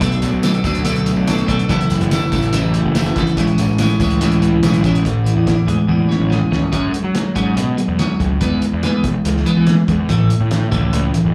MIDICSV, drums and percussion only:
0, 0, Header, 1, 2, 480
1, 0, Start_track
1, 0, Key_signature, 3, "major"
1, 0, Tempo, 420463
1, 11, Time_signature, 4, 2, 24, 8
1, 12951, End_track
2, 0, Start_track
2, 0, Title_t, "Drums"
2, 11, Note_on_c, 9, 42, 102
2, 12, Note_on_c, 9, 36, 113
2, 17, Note_on_c, 9, 54, 28
2, 125, Note_off_c, 9, 42, 0
2, 126, Note_off_c, 9, 36, 0
2, 131, Note_off_c, 9, 54, 0
2, 135, Note_on_c, 9, 42, 46
2, 249, Note_off_c, 9, 42, 0
2, 249, Note_on_c, 9, 54, 67
2, 254, Note_on_c, 9, 42, 78
2, 363, Note_off_c, 9, 54, 0
2, 368, Note_off_c, 9, 42, 0
2, 489, Note_on_c, 9, 54, 94
2, 493, Note_on_c, 9, 42, 98
2, 499, Note_on_c, 9, 38, 111
2, 603, Note_off_c, 9, 54, 0
2, 607, Note_off_c, 9, 42, 0
2, 613, Note_off_c, 9, 38, 0
2, 615, Note_on_c, 9, 42, 52
2, 729, Note_off_c, 9, 42, 0
2, 731, Note_on_c, 9, 36, 85
2, 733, Note_on_c, 9, 42, 73
2, 741, Note_on_c, 9, 54, 73
2, 845, Note_off_c, 9, 36, 0
2, 847, Note_off_c, 9, 42, 0
2, 851, Note_on_c, 9, 42, 50
2, 856, Note_off_c, 9, 54, 0
2, 965, Note_off_c, 9, 42, 0
2, 967, Note_on_c, 9, 42, 110
2, 979, Note_on_c, 9, 54, 75
2, 1081, Note_off_c, 9, 42, 0
2, 1090, Note_on_c, 9, 42, 52
2, 1093, Note_off_c, 9, 54, 0
2, 1204, Note_off_c, 9, 42, 0
2, 1212, Note_on_c, 9, 42, 78
2, 1214, Note_on_c, 9, 54, 78
2, 1326, Note_off_c, 9, 42, 0
2, 1328, Note_off_c, 9, 54, 0
2, 1454, Note_on_c, 9, 54, 101
2, 1456, Note_on_c, 9, 42, 103
2, 1461, Note_on_c, 9, 38, 112
2, 1569, Note_off_c, 9, 54, 0
2, 1570, Note_off_c, 9, 42, 0
2, 1576, Note_off_c, 9, 38, 0
2, 1576, Note_on_c, 9, 42, 54
2, 1691, Note_off_c, 9, 42, 0
2, 1694, Note_on_c, 9, 36, 94
2, 1697, Note_on_c, 9, 42, 87
2, 1702, Note_on_c, 9, 38, 36
2, 1704, Note_on_c, 9, 54, 30
2, 1808, Note_off_c, 9, 36, 0
2, 1811, Note_off_c, 9, 42, 0
2, 1817, Note_off_c, 9, 38, 0
2, 1818, Note_on_c, 9, 42, 50
2, 1819, Note_off_c, 9, 54, 0
2, 1932, Note_off_c, 9, 42, 0
2, 1934, Note_on_c, 9, 36, 119
2, 1934, Note_on_c, 9, 42, 102
2, 1943, Note_on_c, 9, 54, 30
2, 2048, Note_off_c, 9, 36, 0
2, 2048, Note_off_c, 9, 42, 0
2, 2057, Note_off_c, 9, 54, 0
2, 2064, Note_on_c, 9, 42, 49
2, 2168, Note_on_c, 9, 54, 78
2, 2176, Note_off_c, 9, 42, 0
2, 2176, Note_on_c, 9, 42, 77
2, 2282, Note_off_c, 9, 54, 0
2, 2290, Note_off_c, 9, 42, 0
2, 2294, Note_on_c, 9, 42, 50
2, 2408, Note_off_c, 9, 42, 0
2, 2413, Note_on_c, 9, 42, 95
2, 2413, Note_on_c, 9, 54, 99
2, 2419, Note_on_c, 9, 38, 109
2, 2527, Note_off_c, 9, 42, 0
2, 2527, Note_off_c, 9, 54, 0
2, 2533, Note_off_c, 9, 38, 0
2, 2649, Note_on_c, 9, 36, 92
2, 2649, Note_on_c, 9, 42, 74
2, 2655, Note_on_c, 9, 54, 74
2, 2763, Note_off_c, 9, 42, 0
2, 2764, Note_off_c, 9, 36, 0
2, 2767, Note_on_c, 9, 42, 45
2, 2769, Note_off_c, 9, 54, 0
2, 2882, Note_off_c, 9, 42, 0
2, 2885, Note_on_c, 9, 42, 104
2, 2897, Note_on_c, 9, 54, 75
2, 2999, Note_off_c, 9, 42, 0
2, 3011, Note_off_c, 9, 54, 0
2, 3127, Note_on_c, 9, 42, 71
2, 3241, Note_off_c, 9, 42, 0
2, 3367, Note_on_c, 9, 42, 95
2, 3373, Note_on_c, 9, 38, 116
2, 3373, Note_on_c, 9, 54, 97
2, 3481, Note_off_c, 9, 42, 0
2, 3487, Note_off_c, 9, 38, 0
2, 3487, Note_off_c, 9, 54, 0
2, 3491, Note_on_c, 9, 42, 48
2, 3606, Note_off_c, 9, 42, 0
2, 3606, Note_on_c, 9, 42, 78
2, 3607, Note_on_c, 9, 36, 91
2, 3612, Note_on_c, 9, 38, 36
2, 3619, Note_on_c, 9, 54, 28
2, 3721, Note_off_c, 9, 36, 0
2, 3721, Note_off_c, 9, 42, 0
2, 3726, Note_off_c, 9, 38, 0
2, 3731, Note_on_c, 9, 42, 48
2, 3733, Note_off_c, 9, 54, 0
2, 3845, Note_off_c, 9, 42, 0
2, 3848, Note_on_c, 9, 36, 109
2, 3849, Note_on_c, 9, 42, 97
2, 3854, Note_on_c, 9, 54, 28
2, 3962, Note_off_c, 9, 36, 0
2, 3963, Note_off_c, 9, 42, 0
2, 3966, Note_on_c, 9, 42, 47
2, 3968, Note_off_c, 9, 54, 0
2, 4080, Note_off_c, 9, 42, 0
2, 4088, Note_on_c, 9, 42, 77
2, 4092, Note_on_c, 9, 54, 77
2, 4202, Note_off_c, 9, 42, 0
2, 4206, Note_off_c, 9, 54, 0
2, 4320, Note_on_c, 9, 42, 95
2, 4326, Note_on_c, 9, 38, 114
2, 4327, Note_on_c, 9, 54, 93
2, 4435, Note_off_c, 9, 42, 0
2, 4440, Note_off_c, 9, 38, 0
2, 4441, Note_off_c, 9, 54, 0
2, 4445, Note_on_c, 9, 42, 50
2, 4559, Note_off_c, 9, 42, 0
2, 4565, Note_on_c, 9, 36, 89
2, 4565, Note_on_c, 9, 42, 74
2, 4574, Note_on_c, 9, 54, 73
2, 4679, Note_off_c, 9, 36, 0
2, 4679, Note_off_c, 9, 42, 0
2, 4684, Note_on_c, 9, 42, 46
2, 4688, Note_off_c, 9, 54, 0
2, 4798, Note_off_c, 9, 42, 0
2, 4806, Note_on_c, 9, 42, 106
2, 4810, Note_on_c, 9, 54, 78
2, 4921, Note_off_c, 9, 42, 0
2, 4924, Note_off_c, 9, 54, 0
2, 4926, Note_on_c, 9, 42, 48
2, 5041, Note_off_c, 9, 42, 0
2, 5047, Note_on_c, 9, 42, 74
2, 5161, Note_off_c, 9, 42, 0
2, 5284, Note_on_c, 9, 42, 102
2, 5290, Note_on_c, 9, 38, 112
2, 5291, Note_on_c, 9, 54, 90
2, 5398, Note_off_c, 9, 42, 0
2, 5404, Note_off_c, 9, 38, 0
2, 5405, Note_off_c, 9, 54, 0
2, 5407, Note_on_c, 9, 42, 53
2, 5521, Note_off_c, 9, 42, 0
2, 5526, Note_on_c, 9, 42, 84
2, 5527, Note_on_c, 9, 36, 97
2, 5531, Note_on_c, 9, 38, 36
2, 5537, Note_on_c, 9, 54, 27
2, 5640, Note_off_c, 9, 42, 0
2, 5641, Note_off_c, 9, 36, 0
2, 5646, Note_off_c, 9, 38, 0
2, 5651, Note_off_c, 9, 54, 0
2, 5652, Note_on_c, 9, 42, 52
2, 5766, Note_on_c, 9, 36, 111
2, 5767, Note_off_c, 9, 42, 0
2, 5769, Note_on_c, 9, 42, 88
2, 5880, Note_off_c, 9, 36, 0
2, 5883, Note_off_c, 9, 42, 0
2, 6010, Note_on_c, 9, 42, 59
2, 6124, Note_off_c, 9, 42, 0
2, 6245, Note_on_c, 9, 36, 80
2, 6246, Note_on_c, 9, 42, 81
2, 6252, Note_on_c, 9, 38, 106
2, 6359, Note_off_c, 9, 36, 0
2, 6360, Note_off_c, 9, 42, 0
2, 6366, Note_off_c, 9, 38, 0
2, 6488, Note_on_c, 9, 42, 58
2, 6602, Note_off_c, 9, 42, 0
2, 6726, Note_on_c, 9, 48, 58
2, 6840, Note_off_c, 9, 48, 0
2, 6844, Note_on_c, 9, 48, 53
2, 6958, Note_off_c, 9, 48, 0
2, 6970, Note_on_c, 9, 38, 61
2, 7083, Note_on_c, 9, 47, 63
2, 7084, Note_off_c, 9, 38, 0
2, 7197, Note_off_c, 9, 47, 0
2, 7206, Note_on_c, 9, 38, 74
2, 7320, Note_off_c, 9, 38, 0
2, 7325, Note_on_c, 9, 45, 69
2, 7439, Note_off_c, 9, 45, 0
2, 7446, Note_on_c, 9, 38, 92
2, 7560, Note_off_c, 9, 38, 0
2, 7563, Note_on_c, 9, 43, 81
2, 7677, Note_off_c, 9, 43, 0
2, 7680, Note_on_c, 9, 36, 107
2, 7680, Note_on_c, 9, 42, 90
2, 7794, Note_off_c, 9, 36, 0
2, 7794, Note_off_c, 9, 42, 0
2, 7923, Note_on_c, 9, 42, 67
2, 8037, Note_off_c, 9, 42, 0
2, 8159, Note_on_c, 9, 42, 93
2, 8165, Note_on_c, 9, 38, 101
2, 8273, Note_off_c, 9, 42, 0
2, 8279, Note_off_c, 9, 38, 0
2, 8401, Note_on_c, 9, 36, 84
2, 8402, Note_on_c, 9, 42, 70
2, 8515, Note_off_c, 9, 36, 0
2, 8516, Note_off_c, 9, 42, 0
2, 8642, Note_on_c, 9, 42, 98
2, 8756, Note_off_c, 9, 42, 0
2, 8883, Note_on_c, 9, 42, 66
2, 8997, Note_off_c, 9, 42, 0
2, 9121, Note_on_c, 9, 42, 86
2, 9127, Note_on_c, 9, 38, 109
2, 9236, Note_off_c, 9, 42, 0
2, 9241, Note_off_c, 9, 38, 0
2, 9362, Note_on_c, 9, 36, 88
2, 9365, Note_on_c, 9, 42, 72
2, 9476, Note_off_c, 9, 36, 0
2, 9479, Note_off_c, 9, 42, 0
2, 9599, Note_on_c, 9, 42, 96
2, 9601, Note_on_c, 9, 36, 107
2, 9713, Note_off_c, 9, 42, 0
2, 9715, Note_off_c, 9, 36, 0
2, 9839, Note_on_c, 9, 42, 70
2, 9953, Note_off_c, 9, 42, 0
2, 10080, Note_on_c, 9, 42, 80
2, 10086, Note_on_c, 9, 38, 104
2, 10194, Note_off_c, 9, 42, 0
2, 10200, Note_off_c, 9, 38, 0
2, 10318, Note_on_c, 9, 42, 64
2, 10321, Note_on_c, 9, 36, 83
2, 10432, Note_off_c, 9, 42, 0
2, 10435, Note_off_c, 9, 36, 0
2, 10561, Note_on_c, 9, 42, 90
2, 10676, Note_off_c, 9, 42, 0
2, 10694, Note_on_c, 9, 38, 31
2, 10802, Note_on_c, 9, 42, 62
2, 10808, Note_off_c, 9, 38, 0
2, 10916, Note_off_c, 9, 42, 0
2, 11036, Note_on_c, 9, 42, 84
2, 11041, Note_on_c, 9, 38, 102
2, 11150, Note_off_c, 9, 42, 0
2, 11155, Note_off_c, 9, 38, 0
2, 11281, Note_on_c, 9, 36, 92
2, 11282, Note_on_c, 9, 42, 71
2, 11395, Note_off_c, 9, 36, 0
2, 11396, Note_off_c, 9, 42, 0
2, 11519, Note_on_c, 9, 36, 106
2, 11520, Note_on_c, 9, 42, 91
2, 11634, Note_off_c, 9, 36, 0
2, 11634, Note_off_c, 9, 42, 0
2, 11760, Note_on_c, 9, 42, 66
2, 11874, Note_off_c, 9, 42, 0
2, 11998, Note_on_c, 9, 42, 89
2, 12003, Note_on_c, 9, 38, 103
2, 12112, Note_off_c, 9, 42, 0
2, 12117, Note_off_c, 9, 38, 0
2, 12238, Note_on_c, 9, 36, 84
2, 12238, Note_on_c, 9, 42, 70
2, 12352, Note_off_c, 9, 36, 0
2, 12352, Note_off_c, 9, 42, 0
2, 12478, Note_on_c, 9, 42, 98
2, 12592, Note_off_c, 9, 42, 0
2, 12718, Note_on_c, 9, 42, 74
2, 12833, Note_off_c, 9, 42, 0
2, 12951, End_track
0, 0, End_of_file